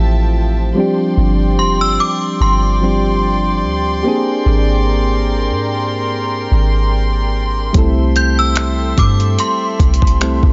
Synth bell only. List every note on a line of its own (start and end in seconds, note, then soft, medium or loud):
1.59 1.81 C6 medium
1.81 2.00 E6 loud
2.00 2.14 D6 medium
2.42 4.01 C6 medium
8.16 8.39 G6 medium
8.39 8.94 E6 medium
8.99 9.13 D6 medium
9.40 10.53 C6 medium